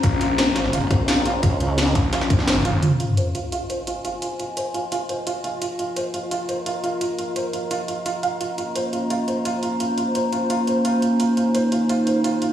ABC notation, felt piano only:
X:1
M:4/4
L:1/8
Q:1/4=172
K:Fm
V:1 name="Felt piano"
F F c F F c F F | F F c F F c c F | F F c F F c F F | F F c F F c F F |
F F c F F c F F | F F c F F F F f | F F c F F c F F | F F c F F c F F |
F F c F F c F F |]